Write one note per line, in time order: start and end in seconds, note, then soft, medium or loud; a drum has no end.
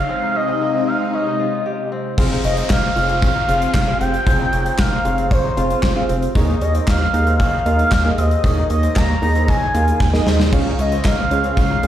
0.00 0.46 A#3 medium
0.00 0.15 C#4 medium
0.00 0.22 D#4 medium
0.00 0.82 F4 medium
0.00 0.94 G#4 medium
0.00 0.37 F5 loud
0.00 noise sweep medium
0.09 2.16 C3 medium
0.09 2.16 G#3 medium
0.09 0.41 C4 medium
0.09 2.16 D#4 medium
0.22 0.87 D#4 medium
0.35 0.54 C#4 medium
0.35 0.89 D#5 loud
0.48 0.74 C4 medium
0.61 2.54 A#3 medium
0.74 1.00 C4 medium
0.87 1.26 D#4 medium
0.87 1.15 F5 loud
1.00 1.19 C4 medium
1.13 1.98 C#4 medium
1.13 1.92 D#5 loud
1.27 2.31 D#4 medium
1.40 2.91 F4 medium
1.66 3.07 G4 medium
1.92 2.18 C4 medium
2.18 2.36 F1 loud
2.18 2.70 C4 medium
2.18 2.50 C4 medium
2.18 2.70 F4 medium
2.18 2.70 G#4 medium
2.18 2.70 C5 medium
2.18 2.70 F5 medium
2.18 kick loud
2.18 crash loud
2.18 downlifter medium
2.31 3.35 D#4 medium
2.44 2.62 F1 loud
2.44 2.63 C#4 medium
2.44 2.56 D#5 medium
2.44 closed hi-hat medium
2.57 2.82 C4 medium
2.57 closed hi-hat medium
2.70 2.88 F1 loud
2.70 4.63 A#3 medium
2.70 3.19 F5 loud
2.70 kick loud
2.70 snare loud
2.70 clap medium
2.70 closed hi-hat medium
2.83 3.02 C4 medium
2.96 3.24 F1 loud
2.96 3.31 C4 medium
2.96 3.15 C#4 medium
2.96 3.31 F4 medium
2.96 3.31 G#4 medium
2.96 3.31 C5 medium
2.96 3.31 F5 medium
2.96 open hi-hat medium
3.09 3.28 C4 medium
3.09 closed hi-hat medium
3.22 4.06 C#4 medium
3.22 4.02 F5 loud
3.22 kick loud
3.22 closed hi-hat medium
3.35 4.39 D#4 medium
3.48 3.67 F1 loud
3.48 3.75 C4 medium
3.48 5.00 F4 medium
3.48 3.75 F4 medium
3.48 3.75 G#4 medium
3.48 3.75 C5 medium
3.48 3.75 F5 medium
3.48 closed hi-hat medium
3.62 closed hi-hat medium
3.74 3.93 F1 loud
3.74 5.16 G4 medium
3.74 kick loud
3.74 snare loud
3.74 clap loud
3.74 closed hi-hat medium
3.88 4.14 C4 medium
3.88 4.14 F4 medium
3.88 4.14 G#4 medium
3.88 4.14 C5 medium
3.88 4.14 F5 medium
4.00 4.19 F1 loud
4.00 4.26 C4 medium
4.00 4.80 G5 loud
4.00 closed hi-hat medium
4.14 closed hi-hat medium
4.26 4.45 F1 loud
4.26 4.59 C4 medium
4.26 4.79 C4 medium
4.26 4.79 F4 medium
4.26 4.79 G#4 medium
4.26 4.79 C5 medium
4.26 4.79 F5 medium
4.26 kick loud
4.26 closed hi-hat medium
4.40 5.44 D#4 medium
4.53 4.71 F1 loud
4.53 4.72 C#4 medium
4.53 closed hi-hat medium
4.66 4.91 C4 medium
4.66 closed hi-hat medium
4.79 4.97 F1 loud
4.79 6.72 A#3 medium
4.79 5.33 F5 loud
4.79 kick loud
4.79 snare loud
4.79 clap loud
4.79 closed hi-hat medium
4.92 5.11 C4 medium
5.05 5.32 F1 loud
5.05 5.40 C4 medium
5.05 5.24 C#4 medium
5.05 5.40 F4 medium
5.05 5.40 G#4 medium
5.05 5.40 C5 medium
5.05 5.40 F5 medium
5.05 closed hi-hat medium
5.18 5.37 C4 medium
5.18 closed hi-hat medium
5.31 6.15 C#4 medium
5.31 6.09 C5 loud
5.31 kick loud
5.31 closed hi-hat medium
5.44 6.48 D#4 medium
5.57 5.75 F1 loud
5.57 5.83 C4 medium
5.57 7.08 F4 medium
5.57 5.83 F4 medium
5.57 5.83 G#4 medium
5.57 5.83 C5 medium
5.57 5.83 F5 medium
5.57 closed hi-hat medium
5.70 closed hi-hat medium
5.83 6.01 F1 loud
5.83 7.24 G4 medium
5.83 kick loud
5.83 snare loud
5.83 clap medium
5.83 closed hi-hat medium
5.96 6.22 C4 medium
5.96 6.22 F4 medium
5.96 6.22 G#4 medium
5.96 6.22 C5 medium
5.96 6.22 F5 loud
6.09 6.28 F1 loud
6.09 6.41 C4 medium
6.09 closed hi-hat medium
6.22 closed hi-hat medium
6.35 6.54 D#2 loud
6.35 6.88 A#3 medium
6.35 6.61 C#4 medium
6.35 6.88 D#4 medium
6.35 6.88 G#4 medium
6.35 6.88 A#4 medium
6.35 6.88 D#5 loud
6.35 kick loud
6.35 closed hi-hat medium
6.48 7.13 D#4 medium
6.61 6.80 D#2 loud
6.61 6.81 C#4 medium
6.61 6.73 D#5 medium
6.61 closed hi-hat medium
6.75 7.07 C4 medium
6.75 closed hi-hat medium
6.88 7.06 D#2 loud
6.88 8.80 A#3 medium
6.88 7.36 F5 loud
6.88 kick loud
6.88 snare loud
6.88 clap loud
6.88 closed hi-hat medium
7.01 7.33 C#4 medium
7.14 7.41 D#2 loud
7.14 7.49 A#3 medium
7.14 7.49 D#4 medium
7.14 7.53 D#4 medium
7.14 7.49 G#4 medium
7.14 7.49 A#4 medium
7.14 7.49 D#5 medium
7.14 closed hi-hat medium
7.27 7.46 C4 medium
7.27 closed hi-hat medium
7.40 8.24 C#4 medium
7.40 8.20 F5 loud
7.40 kick loud
7.40 closed hi-hat medium
7.53 8.57 D#4 medium
7.66 7.84 D#2 loud
7.66 7.92 A#3 medium
7.66 7.92 D#4 medium
7.66 9.17 F4 medium
7.66 7.92 G#4 medium
7.66 7.92 A#4 medium
7.66 7.92 D#5 medium
7.66 closed hi-hat medium
7.79 closed hi-hat medium
7.92 8.10 D#2 loud
7.92 9.33 G4 medium
7.92 kick loud
7.92 snare loud
7.92 clap loud
7.92 closed hi-hat medium
8.05 8.31 A#3 medium
8.05 8.31 D#4 medium
8.05 8.31 G#4 medium
8.05 8.31 A#4 medium
8.05 8.31 D#5 medium
8.18 8.36 D#2 loud
8.18 8.50 C4 medium
8.18 8.70 D#5 loud
8.18 closed hi-hat medium
8.31 closed hi-hat medium
8.44 8.62 D#2 loud
8.44 8.97 A#3 medium
8.44 8.70 C#4 medium
8.44 8.97 D#4 medium
8.44 8.97 G#4 medium
8.44 8.97 A#4 medium
8.44 8.97 D#5 medium
8.44 kick loud
8.44 closed hi-hat medium
8.57 9.22 D#4 medium
8.70 8.88 D#2 loud
8.70 8.89 C#4 medium
8.70 8.98 D#5 loud
8.70 closed hi-hat medium
8.83 9.15 C4 medium
8.83 closed hi-hat medium
8.96 9.14 D#2 loud
8.96 10.89 A#3 medium
8.96 9.50 A#5 loud
8.96 kick loud
8.96 snare loud
8.96 clap medium
8.96 closed hi-hat medium
9.09 9.41 C#4 medium
9.22 9.50 D#2 loud
9.22 9.57 A#3 medium
9.22 9.57 D#4 medium
9.22 9.61 D#4 medium
9.22 9.57 G#4 medium
9.22 9.57 A#4 medium
9.22 9.57 D#5 medium
9.22 open hi-hat medium
9.35 9.55 C4 medium
9.35 closed hi-hat medium
9.48 10.33 C#4 medium
9.48 10.27 G#5 loud
9.48 kick loud
9.48 closed hi-hat medium
9.62 10.65 D#4 medium
9.74 9.93 D#2 loud
9.74 10.01 A#3 medium
9.74 10.01 D#4 medium
9.74 11.26 F4 medium
9.74 10.01 G#4 medium
9.74 10.01 A#4 medium
9.74 10.01 F5 medium
9.74 closed hi-hat medium
9.88 closed hi-hat medium
10.00 10.19 D#2 loud
10.00 11.42 G4 medium
10.00 kick loud
10.00 snare medium
10.13 10.40 A#3 medium
10.13 10.40 D#4 medium
10.13 10.40 G#4 medium
10.13 10.40 A#4 medium
10.13 10.40 D#5 loud
10.13 snare medium
10.27 10.54 D#2 loud
10.27 10.59 C4 medium
10.27 snare loud
10.40 snare loud
10.53 10.71 C#2 loud
10.53 11.87 C#3 medium
10.53 11.87 G#3 medium
10.53 10.78 C#4 medium
10.53 11.05 C#4 medium
10.53 11.05 F4 medium
10.53 11.87 F4 medium
10.53 11.05 G#4 medium
10.53 11.05 C#5 medium
10.53 11.05 F5 loud
10.53 kick loud
10.53 crash medium
10.66 11.70 D#4 medium
10.79 10.97 C#2 loud
10.79 10.98 C#4 medium
10.79 11.07 D#5 medium
10.79 closed hi-hat medium
10.92 11.18 C4 medium
10.92 closed hi-hat medium
11.05 11.23 C#2 loud
11.05 11.87 A#3 medium
11.05 11.57 F5 loud
11.05 kick loud
11.05 snare loud
11.05 clap medium
11.05 closed hi-hat medium
11.18 11.37 C4 medium
11.31 11.58 C#2 loud
11.31 11.66 C#4 medium
11.31 11.50 C#4 medium
11.31 11.66 F4 medium
11.31 11.66 G#4 medium
11.31 11.66 C#5 medium
11.31 11.66 F5 medium
11.31 closed hi-hat medium
11.44 11.63 C4 medium
11.44 closed hi-hat medium
11.57 11.87 C#4 medium
11.57 11.87 F5 loud
11.57 kick loud
11.57 closed hi-hat medium
11.70 11.87 D#4 medium
11.83 11.87 C#2 loud
11.83 11.87 C#4 medium
11.83 11.87 F4 medium
11.83 11.87 G#4 medium
11.83 11.87 C#5 medium
11.83 11.87 G5 medium
11.83 closed hi-hat medium